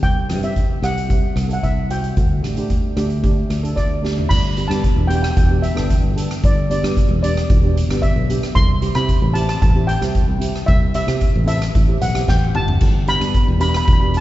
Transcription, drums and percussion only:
0.03 kick medium
0.03 closed hi-hat soft
0.30 cross-stick medium
0.30 closed hi-hat medium
0.43 closed hi-hat medium
0.56 kick medium
0.56 closed hi-hat medium
0.83 cross-stick medium
0.83 closed hi-hat medium
0.98 closed hi-hat medium
1.10 kick medium
1.10 closed hi-hat soft
1.37 cross-stick medium
1.37 closed hi-hat medium
1.51 closed hi-hat medium
1.63 kick medium
1.63 closed hi-hat medium
1.90 closed hi-hat medium
2.04 closed hi-hat medium
2.17 kick medium
2.17 closed hi-hat medium
2.44 cross-stick medium
2.44 closed hi-hat medium
2.57 closed hi-hat medium
2.70 kick medium
2.70 closed hi-hat medium
2.97 cross-stick medium
2.97 closed hi-hat medium
3.10 closed hi-hat medium
3.24 kick medium
3.24 closed hi-hat medium
3.50 cross-stick medium
3.50 closed hi-hat medium
3.65 closed hi-hat medium
3.77 kick medium
3.77 cross-stick medium
3.77 closed hi-hat medium
4.05 snare medium
4.18 floor tom medium
4.30 kick medium
4.30 crash medium
4.57 closed hi-hat medium
4.71 cross-stick medium
4.71 closed hi-hat medium
4.84 kick medium
4.84 closed hi-hat medium
5.10 closed hi-hat medium
5.24 cross-stick medium
5.24 closed hi-hat medium
5.37 kick loud
5.37 closed hi-hat medium
5.63 closed hi-hat medium
5.77 cross-stick medium
5.77 closed hi-hat medium
5.90 kick medium
5.90 closed hi-hat medium
6.17 closed hi-hat medium
6.31 cross-stick medium
6.31 closed hi-hat medium
6.44 kick loud
6.44 closed hi-hat medium
6.71 closed hi-hat medium
6.84 cross-stick medium
6.84 closed hi-hat medium
6.97 kick medium
6.97 closed hi-hat medium
7.24 closed hi-hat medium
7.37 cross-stick medium
7.37 closed hi-hat medium
7.50 kick loud
7.50 closed hi-hat medium
7.77 closed hi-hat medium
7.91 cross-stick medium
7.91 closed hi-hat medium
8.03 kick medium
8.03 closed hi-hat medium
8.30 closed hi-hat medium
8.43 cross-stick medium
8.43 closed hi-hat medium
8.56 kick loud
8.56 closed hi-hat medium
8.82 closed hi-hat medium
8.95 cross-stick medium
8.95 closed hi-hat medium
9.09 kick medium
9.09 closed hi-hat medium
9.35 closed hi-hat medium
9.49 cross-stick medium
9.49 closed hi-hat medium
9.62 kick loud
9.62 closed hi-hat medium
9.89 closed hi-hat medium
10.02 cross-stick medium
10.02 closed hi-hat medium
10.15 kick medium
10.15 closed hi-hat medium
10.41 closed hi-hat medium
10.56 cross-stick medium
10.56 closed hi-hat medium
10.68 kick loud
10.68 closed hi-hat medium
10.94 closed hi-hat medium
11.08 cross-stick medium
11.08 closed hi-hat medium
11.21 kick medium
11.21 closed hi-hat medium
11.48 closed hi-hat medium
11.62 cross-stick medium
11.62 closed hi-hat medium
11.75 kick loud
11.75 closed hi-hat medium
12.01 closed hi-hat medium
12.15 cross-stick medium
12.15 closed hi-hat medium
12.28 kick medium
12.28 snare medium
12.55 mid tom loud
12.68 floor tom medium
12.81 kick loud
12.81 closed hi-hat medium
12.81 crash medium
13.08 closed hi-hat medium
13.21 cross-stick medium
13.21 closed hi-hat medium
13.34 kick medium
13.34 closed hi-hat medium
13.61 closed hi-hat medium
13.74 cross-stick loud
13.74 closed hi-hat medium
13.88 kick loud
13.88 closed hi-hat medium
14.14 closed hi-hat medium

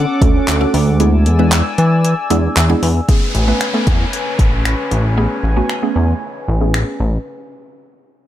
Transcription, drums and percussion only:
0.22 kick medium
0.22 closed hi-hat medium
0.48 clap loud
0.48 closed hi-hat medium
0.74 open hi-hat medium
1.00 closed hi-hat loud
1.26 closed hi-hat medium
1.52 clap loud
1.52 closed hi-hat medium
1.78 closed hi-hat medium
2.05 closed hi-hat loud
2.30 closed hi-hat medium
2.57 clap loud
2.57 closed hi-hat medium
2.83 open hi-hat medium
3.09 kick loud
3.09 closed hi-hat medium
3.35 closed hi-hat medium
3.61 finger snap loud
3.61 closed hi-hat medium
3.87 kick medium
3.87 closed hi-hat medium
4.13 closed hi-hat loud
4.39 kick medium
4.39 closed hi-hat medium
4.65 finger snap loud
4.65 closed hi-hat medium
4.91 closed hi-hat medium
5.70 finger snap loud
6.74 finger snap loud

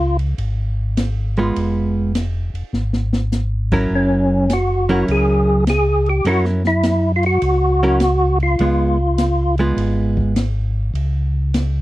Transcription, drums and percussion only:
0.19 ride soft
0.38 ride medium
0.97 snare medium
0.97 hi-hat pedal medium
0.97 ride medium
1.37 ride soft
1.56 ride medium
2.15 snare medium
2.15 hi-hat pedal medium
2.15 ride medium
2.55 ride soft
2.74 snare soft
2.93 snare medium
3.13 snare medium
3.32 snare medium
3.32 hi-hat pedal medium
3.72 kick medium
3.72 crash medium
4.50 snare medium
4.50 hi-hat pedal medium
4.50 ride medium
4.89 ride soft
5.08 ride medium
5.67 snare medium
5.67 hi-hat pedal medium
5.67 ride medium
6.06 ride soft
6.25 ride medium
6.45 snare soft
6.64 snare soft
6.83 snare medium
6.83 hi-hat pedal medium
6.83 ride medium
7.23 ride soft
7.42 ride medium
8.00 snare medium
8.00 hi-hat pedal medium
8.00 ride medium
8.40 ride soft
8.59 ride medium
9.18 snare medium
9.18 hi-hat pedal medium
9.18 ride medium
9.58 ride soft
9.78 ride medium
10.17 kick soft
10.36 snare medium
10.36 hi-hat pedal medium
10.36 ride medium
10.95 ride medium
11.54 snare medium
11.54 hi-hat pedal medium
11.54 ride medium

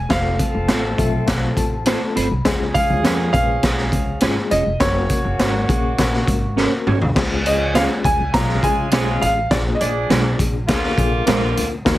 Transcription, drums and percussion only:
0.10 kick loud
0.10 snare loud
0.10 closed hi-hat medium
0.39 kick medium
0.39 closed hi-hat medium
0.68 snare loud
0.68 closed hi-hat medium
0.98 kick medium
0.98 closed hi-hat medium
1.27 kick medium
1.27 snare medium
1.27 closed hi-hat medium
1.57 kick medium
1.57 closed hi-hat medium
1.86 snare loud
1.86 closed hi-hat medium
2.17 closed hi-hat medium
2.45 kick loud
2.45 snare loud
2.45 closed hi-hat medium
2.75 kick medium
2.75 closed hi-hat medium
3.04 snare loud
3.04 closed hi-hat medium
3.34 kick medium
3.34 closed hi-hat medium
3.63 kick medium
3.63 snare medium
3.63 closed hi-hat medium
3.78 snare soft
3.92 kick medium
3.92 closed hi-hat medium
4.20 snare medium
4.20 closed hi-hat medium
4.51 closed hi-hat medium
4.80 kick loud
4.80 snare loud
4.80 closed hi-hat medium
5.09 kick medium
5.09 closed hi-hat medium
5.39 snare medium
5.39 closed hi-hat medium
5.69 kick medium
5.69 closed hi-hat medium
5.98 kick medium
5.98 snare medium
5.98 closed hi-hat medium
6.13 snare soft
6.28 kick medium
6.28 closed hi-hat medium
6.57 snare soft
6.87 mid tom medium
7.02 floor tom medium
7.16 kick loud
7.16 snare loud
7.16 crash medium
7.46 closed hi-hat medium
7.75 snare medium
7.75 closed hi-hat medium
8.04 kick medium
8.04 closed hi-hat medium
8.34 kick medium
8.34 snare medium
8.34 closed hi-hat medium
8.49 snare soft
8.63 kick medium
8.63 closed hi-hat medium
8.91 snare loud
8.91 closed hi-hat loud
9.22 closed hi-hat medium
9.51 kick loud
9.51 snare loud
9.51 closed hi-hat medium
9.81 closed hi-hat medium
10.10 snare loud
10.10 closed hi-hat medium
10.39 kick medium
10.39 closed hi-hat medium
10.68 kick medium
10.68 snare medium
10.68 closed hi-hat medium
10.83 snare soft
10.98 kick medium
10.98 closed hi-hat medium
11.27 snare loud
11.27 closed hi-hat medium
11.57 closed hi-hat medium
11.86 kick loud
11.86 snare loud
11.86 closed hi-hat medium

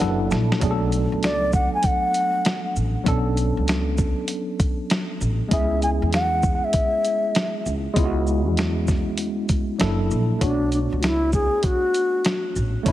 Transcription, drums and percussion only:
0.00 snare medium
0.00 closed hi-hat medium
0.31 snare medium
0.31 shaker soft
0.52 snare medium
0.61 kick loud
0.61 closed hi-hat medium
0.92 closed hi-hat soft
0.92 shaker soft
1.23 snare loud
1.23 closed hi-hat medium
1.53 kick loud
1.53 shaker medium
1.83 kick medium
1.83 closed hi-hat medium
2.14 closed hi-hat medium
2.14 shaker medium
2.45 snare loud
2.45 closed hi-hat medium
2.76 shaker medium
3.06 kick loud
3.06 closed hi-hat medium
3.37 closed hi-hat soft
3.37 shaker soft
3.68 snare loud
3.68 closed hi-hat medium
3.98 kick loud
3.98 shaker medium
4.28 closed hi-hat loud
4.60 kick loud
4.60 closed hi-hat medium
4.60 shaker medium
4.90 snare loud
4.90 closed hi-hat medium
5.21 shaker medium
5.51 kick loud
5.51 closed hi-hat medium
5.82 closed hi-hat soft
5.82 shaker soft
6.13 snare loud
6.13 closed hi-hat medium
6.43 kick loud
6.43 shaker medium
6.73 kick medium
6.73 closed hi-hat medium
7.05 closed hi-hat medium
7.05 shaker medium
7.35 snare loud
7.35 closed hi-hat medium
7.66 shaker medium
7.96 kick loud
7.96 closed hi-hat loud
8.27 shaker soft
8.57 snare loud
8.57 closed hi-hat medium
8.87 kick medium
8.87 snare soft
8.87 shaker medium
9.18 closed hi-hat medium
9.49 kick medium
9.49 closed hi-hat medium
9.49 shaker medium
9.80 snare loud
9.80 closed hi-hat medium
10.11 shaker soft
10.41 kick loud
10.41 closed hi-hat medium
10.72 closed hi-hat soft
10.72 shaker soft
11.03 snare loud
11.03 closed hi-hat medium
11.33 kick medium
11.33 shaker medium
11.63 kick medium
11.63 closed hi-hat medium
11.94 closed hi-hat medium
11.94 shaker medium
12.25 snare loud
12.25 closed hi-hat medium
12.56 shaker soft
12.86 kick loud
12.86 closed hi-hat medium

